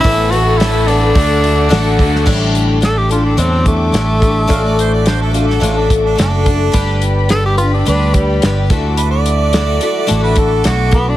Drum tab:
CC |----------------|x---------------|----------------|----------------|
HH |o-o-o-o-o-o-o-o-|--x-x-x-x-x-x-x-|x-x-x-x-x-x-x-x-|x-x-x-x-x-x-x-x-|
SD |----o-------o--o|----o-------o---|----o--o----o---|----o-------o---|
BD |o-------o-----o-|o---------o---o-|o---------o---o-|o---------o---o-|

CC |----------------|
HH |x-x-x-x-x-x-x-x-|
SD |----o-------o---|
BD |----------o---o-|